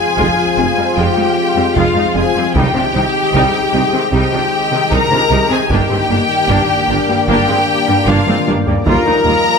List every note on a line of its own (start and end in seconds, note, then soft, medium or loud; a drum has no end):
0.00 2.51 F3 medium
0.00 5.55 G#3 soft
0.00 5.71 C4 medium
0.00 2.51 F4 medium
0.00 0.98 G#4 medium
0.00 2.55 C5 medium
0.00 0.94 G#5 medium
0.17 0.26 F1 medium
0.17 0.26 F2 medium
0.17 0.30 F3 medium
0.17 0.36 G#3 medium
0.17 0.36 F4 medium
0.17 taiko medium
0.57 0.65 F1 soft
0.57 0.66 F1 soft
0.57 0.66 F2 soft
0.57 0.65 G#3 soft
0.57 0.70 C4 soft
0.57 0.65 F4 soft
0.77 0.85 F2 soft
0.77 0.85 G3 soft
0.77 0.85 C4 soft
0.77 0.90 F4 soft
0.96 1.05 F1 medium
0.96 1.05 F2 medium
0.96 1.10 F3 medium
0.96 1.15 G#3 medium
0.96 1.15 F4 soft
0.96 1.77 G4 medium
0.96 1.76 G5 medium
1.17 1.25 F2 soft
1.17 1.25 F3 soft
1.17 1.29 G#3 medium
1.17 1.25 D#4 soft
1.56 1.64 F2 soft
1.56 1.64 G3 soft
1.56 1.64 C4 soft
1.56 1.69 C4 soft
1.76 1.84 F1 medium
1.76 1.84 F2 medium
1.76 1.88 F3 medium
1.76 1.95 G#3 soft
1.76 1.95 F4 soft
1.76 2.16 F4 medium
1.76 2.16 F5 medium
1.76 taiko medium
1.95 2.03 F2 soft
1.95 2.04 F3 soft
1.95 2.08 G#3 soft
1.95 2.05 D#4 soft
2.15 2.23 F1 soft
2.15 2.24 F1 soft
2.15 2.23 F2 soft
2.15 2.24 G#3 soft
2.15 2.28 C4 medium
2.15 2.24 F4 soft
2.15 2.56 G#4 medium
2.15 2.55 G#5 medium
2.35 2.43 F2 soft
2.35 2.44 G3 soft
2.35 2.44 C4 soft
2.35 2.47 F4 medium
2.54 2.63 C2 medium
2.54 2.63 C3 medium
2.54 2.67 C3 medium
2.54 8.82 D#3 medium
2.54 2.74 G3 medium
2.54 2.74 D#4 medium
2.54 6.50 D#4 soft
2.54 8.86 G4 medium
2.54 4.12 G4 medium
2.54 5.71 D#5 medium
2.54 4.10 G5 medium
2.54 taiko medium
2.74 2.82 C3 soft
2.74 2.84 F3 soft
2.74 2.87 C4 medium
2.74 2.83 D4 soft
2.94 3.02 C2 soft
2.94 3.02 C3 soft
2.94 3.07 D#3 medium
2.94 3.03 G3 soft
2.94 3.03 D#4 soft
3.33 3.42 C2 medium
3.33 3.41 C3 medium
3.33 3.46 C3 medium
3.33 3.53 G3 medium
3.33 3.53 D#4 medium
3.33 taiko medium
3.73 3.81 C2 soft
3.73 3.81 C3 soft
3.73 3.85 G3 soft
3.73 3.81 G3 soft
3.73 3.82 D#4 soft
3.92 4.00 C3 soft
3.92 4.02 D#3 soft
3.92 4.05 C4 medium
3.92 4.02 C4 soft
4.12 4.21 C2 medium
4.12 4.20 C3 medium
4.12 4.25 C3 medium
4.12 4.31 G3 medium
4.12 4.31 D#4 medium
4.12 4.91 G4 medium
4.12 4.90 G5 medium
4.32 4.40 C3 soft
4.32 4.44 D#3 medium
4.32 4.41 F3 soft
4.32 4.41 D4 soft
4.72 4.80 C3 soft
4.72 4.80 D#3 medium
4.72 4.84 G3 medium
4.72 4.80 C4 medium
4.91 4.99 C2 medium
4.91 5.00 C2 medium
4.91 4.99 C3 medium
4.91 5.04 C3 medium
4.91 5.10 G3 soft
4.91 5.10 D#4 soft
4.91 5.51 A#4 medium
4.91 5.52 A#5 medium
4.91 taiko medium
5.11 5.19 C3 soft
5.11 5.24 D#3 medium
5.11 5.19 F3 soft
5.11 5.20 D4 medium
5.31 5.39 C2 soft
5.31 5.39 C3 soft
5.31 5.44 G3 medium
5.31 5.40 G3 soft
5.31 5.39 D#4 medium
5.50 5.58 C3 soft
5.50 5.59 D#3 soft
5.50 5.63 C4 medium
5.50 5.59 C4 soft
5.50 5.71 G#4 medium
5.50 5.72 G#5 medium
5.69 5.78 G1 medium
5.69 5.79 G1 medium
5.69 5.78 G2 medium
5.69 5.83 G3 medium
5.69 5.89 A#3 medium
5.69 9.59 A#3 medium
5.69 8.83 A#3 medium
5.69 5.89 D4 medium
5.69 7.25 G4 medium
5.69 8.87 D5 medium
5.69 7.28 G5 medium
5.69 taiko medium
5.90 5.98 G2 soft
5.90 5.99 G#3 soft
5.90 5.98 C4 soft
5.90 6.02 G4 medium
6.09 6.18 G1 soft
6.09 6.17 G2 soft
6.09 6.18 A#3 soft
6.09 6.22 A#3 medium
6.09 6.18 D4 soft
6.49 6.57 G1 medium
6.49 6.57 G2 medium
6.49 6.62 G3 medium
6.49 6.68 A#3 medium
6.49 6.68 D4 medium
6.49 8.87 D4 medium
6.49 taiko medium
6.89 6.97 G1 medium
6.89 6.97 G1 soft
6.89 6.97 G2 soft
6.89 6.97 A#3 soft
6.89 7.01 D4 medium
6.89 6.98 D4 soft
7.09 7.17 G2 medium
7.09 7.17 G3 soft
7.09 7.17 A#3 medium
7.09 7.21 G4 medium
7.28 7.36 G1 medium
7.28 7.36 G2 medium
7.28 7.41 G3 medium
7.28 7.47 A#3 medium
7.28 7.47 D4 medium
7.28 8.06 G4 medium
7.28 8.07 G5 medium
7.48 7.56 G2 medium
7.48 7.56 G#3 soft
7.48 7.61 A#3 medium
7.48 7.56 C4 medium
7.88 7.96 G2 soft
7.88 7.96 G3 medium
7.88 7.96 A#3 medium
7.88 8.00 D4 medium
8.07 8.15 G1 medium
8.07 8.16 G1 medium
8.07 8.15 G2 medium
8.07 8.20 G3 medium
8.07 8.26 A#3 medium
8.07 8.26 D4 medium
8.07 8.47 F4 medium
8.07 8.47 F5 medium
8.07 taiko mid medium
8.27 8.35 G2 medium
8.27 8.36 G#3 medium
8.27 8.40 A#3 medium
8.27 8.36 C4 medium
8.27 taiko high medium
8.47 8.55 G1 medium
8.47 8.55 G1 soft
8.47 8.55 G2 medium
8.47 8.56 A#3 medium
8.47 8.59 D4 medium
8.47 8.56 D4 medium
8.47 taiko high medium
8.67 8.75 G2 medium
8.67 8.76 G3 medium
8.67 8.76 A#3 medium
8.67 8.79 G4 medium
8.67 taiko low medium
8.86 8.94 D#2 medium
8.86 8.95 D#2 medium
8.86 8.99 D#3 medium
8.86 9.59 F3 medium
8.86 9.05 G3 medium
8.86 9.59 G3 medium
8.86 9.59 F4 medium
8.86 9.05 F4 medium
8.86 9.59 F4 medium
8.86 9.59 A#4 medium
8.86 9.59 D#5 medium
8.86 9.59 A#5 loud
8.86 taiko medium
9.06 9.14 D#2 medium
9.06 9.15 F3 medium
9.06 9.19 D#4 medium
9.06 9.15 D#4 medium
9.25 9.33 D#2 medium
9.25 9.34 D#2 medium
9.25 9.38 G3 medium
9.25 9.34 G3 medium
9.25 9.34 F4 medium